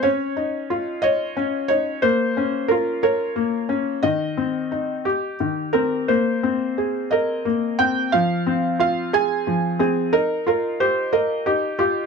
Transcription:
\new Staff \with { instrumentName = "Felt piano" } { \time 6/8 \key aes \major \tempo 4. = 60 << { des''4. ees''4 des''8 | c''4 bes'8 des''4. | ees''2 r8 bes'8 | c''4. ees''4 g''8 |
f''4 f''8 aes''4 aes'8 | bes'8 bes'8 c''8 bes'8 g'8 g'8 | } \\ { des'8 ees'8 f'8 des''8 des'8 ees'8 | bes8 des'8 f'8 bes'8 bes8 des'8 | ees8 c'8 ees'8 g'8 ees8 c'8 | bes8 c'8 aes'8 bes'8 bes8 c'8 |
f8 c'8 f'8 aes'8 f8 c'8 | ees'8 f'8 g'8 ees''8 ees'8 f'8 | } >> }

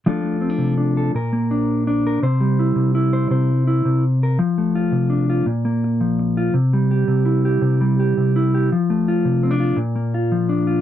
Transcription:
\new Staff \with { instrumentName = "Clean electric guitar" } { \time 12/8 \key f \major \tempo 4. = 111 << { <a d' f' a'>4 c'16 d'8. d'8 a'8 bes'4 d'4 d'8 bes'8 | c''4 e'4 e'8 c''8 c''4 e'4 r8 bes'8 | r4 f'4 d'8 f'8 r2 r8 f'8 | r4 g'4 e'8 g'4. g'4 e'8 g'8 |
r4 f'4 c'16 d'16 f'8 r4 f'4 d'8 f'8 | } \\ { f8 a4 c4. bes,8 bes2~ bes8 | c8 g4 c4. c4. c4. | f8 a4 c4. bes,8 bes4 f4. | c8 g4 c4. c8 g4 c4. |
f8 a4 c4. bes,8 bes4 f4. | } >> }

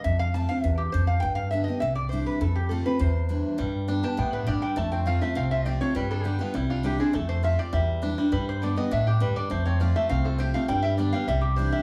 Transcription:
<<
  \new Staff \with { instrumentName = "Resonator guitar played with a steel bar" } { \time 4/4 \key g \mixolydian \tempo 4 = 203 e''8 f''8 a''8 f''8 e''8 g'8 c''8 f''8 | g''8 f''8 e''8 ees''8 e''8 d''8 c''8 b'8 | a'8 g'8 a'8 b'8 c''2 | r4. a''8 g''8 b'8 d''8 g''8 |
a''8 g''8 f''8 e''8 f''8 e''8 d''8 cis''8 | b'8 a'8 g'8 f'8 e'8 f'8 g'8 aes'8 | a'8 c''8 e''8 d''8 e''4. r8 | b'8 c''8 d''8 ees''8 e''8 g'8 b'8 d''8 |
c''8 cis''8 d''8 e''8 f''8 a'8 c''8 f''8 | g''8 e''8 d''8 f''8 e''8 g'8 c''8 e''8 | }
  \new Staff \with { instrumentName = "Five-string banjo" } { \time 4/4 \key g \mixolydian r1 | r1 | r1 | g4 d'8 g'8 b8 d'8 g'8 g8 |
a8 c'8 f'8 a8 c'8 f'8 g'8 a8 | g8 d'8 d8 b8 g8 d'8 d8 c'8 | a4 f'8 g'8 g4 d'8 g8 | g4 d8 b8 d'8 g'8 g8 d'8 |
a8 c'8 f'8 a8 c'8 f'8 g'8 a8 | g8 g'8 d'8 g8 g4 d'8 g8 | }
  \new Staff \with { instrumentName = "Steel-string acoustic guitar" } { \time 4/4 \key g \mixolydian << { r4 <f a c' f'>8 <c' f'>8 r2 | r4 <d g b g'>8 <b g'>8 r4 <e g d' e'>4 | r4 <f a c' f'>8 <c' f'>8 r4 <e g d' e'>4 | r4 <d g b g'>8 <b g'>8 r2 |
r4 <f a c' f'>8 <c' f'>8 r4 <f a c' f'>8 <c' f'>8 | r4 <d g b g'>8 <b g'>8 r4 <e g d' e'>8 <d' e'>8 | r4 <f a c' f'>4 r4 <e g d' e'>8 <d' e'>8 | r4 <d g b g'>8 <b g'>8 r2 |
r4 <f a c' f'>4 r4 <f a c' f'>8 <c' f'>8 | r4 <d g b g'>8 <b g'>8 r4 <e g d' e'>4 | } \\ { f,2 e,4 f,4 | g,2 c2 | f,2 e,2 | g,2 a,4 g,4 |
f,2 c2 | g,2 c2 | f,2 e,2 | g,2 a,4 g,4 |
f,2 c2 | g,2 c2 | } >> }
  \new Staff \with { instrumentName = "Upright bass" } { \clef bass \time 4/4 \key g \mixolydian f,2 e,4 f,4 | g,2 c,2 | f,2 e,2 | g,2 a,4 g,4 |
f,2 c,2 | g,2 c,2 | f,2 e,2 | g,2 d,2 |
f,2 c,2 | g,2 c,2 | }
>>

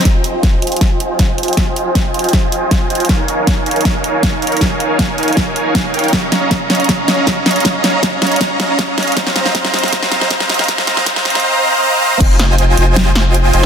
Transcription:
<<
  \new Staff \with { instrumentName = "Supersaw synth" } { \time 4/4 \key f \minor \tempo 4 = 158 r4. <f' c'' ees'' g'' aes''>2 <f' c'' ees'' g'' aes''>8 | r4. <f' c'' ees'' g'' aes''>2 <f' c'' ees'' g'' aes''>8 | ees'4. <ees' bes' des'' f'' aes''>2 <ees' bes' des'' f'' bes''>8 | <ees' bes' des'' f'' aes''>4. <ees' bes' des'' f'' aes''>2 <ees' bes' des'' f'' g''>8 |
<des' des'' ees'' f'' bes''>4. <des' des'' ees'' f'' bes''>8 <des' des'' ees'' f'' bes''>4. <des' des'' ees'' f'' bes''>8 | <des' ees'' f''>4. <des' des'' ees'' f'' bes''>8 <des' des'' ees'' f''>4. <des' des'' ees'' f'' bes''>8 | <c' c'' f'' bes''>4 <c' c'' ees'' f'' bes''>4 <c' c'' f'' bes''>4 <c' c'' ees'' f'' bes''>4 | <c' c'' ees'' bes''>8 <c' c'' ees'' f'' bes''>8 <c' c'' f''>8 <c' c'' ees'' f'' bes''>8 <c' c'' ees'' f'' bes''>8 <c' c'' ees'' f'' bes''>8 <c' c'' ees'' f'' bes''>8 <c' c'' ees'' f'' bes''>8 |
<f' c'' ees'' g'' aes''>4. <f' c'' ees'' g'' aes''>2 <f' c'' ees'' g'' aes''>8 | }
  \new Staff \with { instrumentName = "Sub bass" } { \clef bass \time 4/4 \key f \minor r1 | r1 | r1 | r1 |
r1 | r1 | r1 | r1 |
f,,4. f,,2 f,,8 | }
  \new DrumStaff \with { instrumentName = "Drums" } \drummode { \time 4/4 <hh bd sn>8 hh8 <hh bd sn>8 hh32 hh32 hh32 hh32 <hh bd sn>8 hh8 <hh bd sn>8 hh32 hh32 hh32 hh32 | <hh bd sn>8 hh8 <hh bd sn>8 hh32 hh32 hh32 hh32 <hh bd sn>8 hh8 <hh bd sn>8 hh32 hh32 hh32 hh32 | <hh bd sn>8 hh8 <hh bd sn>8 hh32 hh32 hh32 hh32 <hh bd sn>8 hh8 <hh bd sn>8 hh32 hh32 hh32 hh32 | <hh bd sn>8 hh8 <hh bd sn>8 hh32 hh32 hh32 hh32 <hh bd sn>8 hh8 <hh bd sn>8 hh32 hh32 hh32 hh32 |
<hh bd sn>8 <hh sn>8 <hh bd sn>8 <hh sn>32 hh32 hh32 hh32 <hh bd sn>8 <hh sn>8 <hh bd sn>8 <hh sn>32 hh32 hh32 hh32 | <hh bd sn>8 <hh sn>8 <hh bd sn>8 <hh sn>32 hh32 hh32 hh32 <hh bd sn>8 <hh sn>8 <hh bd sn>8 <hh sn>32 hh32 hh32 hh32 | <hh bd sn>16 sn16 <hh sn>16 sn16 <hh bd sn>16 sn16 <hh sn>32 hh32 <hh sn>32 hh32 <hh bd sn>16 sn16 <hh sn>16 sn16 <hh bd sn>16 sn16 <hh sn>32 hh32 <hh sn>32 hh32 | <hh bd sn>16 sn16 <hh sn>16 sn16 <hh bd sn>16 sn16 <hh sn>32 hh32 <hh sn>32 hh32 r4 r4 |
<cymc hh bd>8 <hh sn>8 hh8 hh8 <hh sn>8 <hh sn>8 hh8 hh8 | }
>>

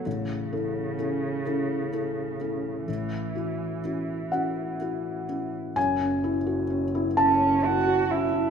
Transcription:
<<
  \new Staff \with { instrumentName = "Felt piano" } { \time 6/8 \key fis \minor \tempo 4. = 42 << { r2. | r4. fis''4. | gis''4. a''4. | } \\ { a,,8 <e' a'>8 <cis' e' a'>8 <cis' e' a'>8 <e' a'>8 <cis' e' a'>8 | a,,8 <e' fis'>8 <cis' e' fis'>8 <cis' e' fis'>8 <e' fis'>8 <cis' e' fis'>8 | fis,16 cis'16 e'16 fis'16 cis'16 e'16 cis16 cis'16 e'16 fis'16 cis'16 e'16 | } >> }
  \new Staff \with { instrumentName = "Cello" } { \time 6/8 \key fis \minor cis2. | e2. | r4. cis'8 fis'8 e'8 | }
  \new Staff \with { instrumentName = "Double bass" } { \clef bass \time 6/8 \key fis \minor r2. | r2. | fis,,2. | }
>>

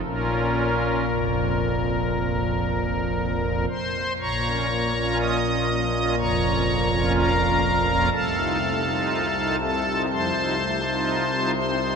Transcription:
<<
  \new Staff \with { instrumentName = "Pipe organ" } { \time 4/4 \key bes \minor \tempo 4 = 61 << { bes'2.~ bes'8 <c'' c'''>8 | <des'' bes'' des'''>4 <ees'' ees'''>4 <des'' bes'' des'''>4 <bes' f'' bes''>4 | <a' f'' a''>4. <a' a''>8 <c'' a'' c'''>4. <c'' c'''>8 | } \\ { <bes, des' f'>4 f,4 bes,,4. r8 | bes,16 <des' f'>16 bes16 <des' f'>8 <des' f'>16 f16 <des' f'>16 f,16 <des' f'>16 bes16 <des' f'>8 <des' f'>16 f16 <des' f'>16 | c16 <ees' f'>16 a16 <ees' f'>8 <ees' f'>16 c'16 <ees' f'>16 f16 <ees' f'>16 a16 <ees' f'>8 <ees' f'>16 c'16 <ees' f'>16 | } >> }
  \new Staff \with { instrumentName = "Pipe organ" } { \clef bass \time 4/4 \key bes \minor bes,,4 f,,2~ f,,8 r8 | bes,,2 f,,2 | c,2 f,16 r4. r16 | }
>>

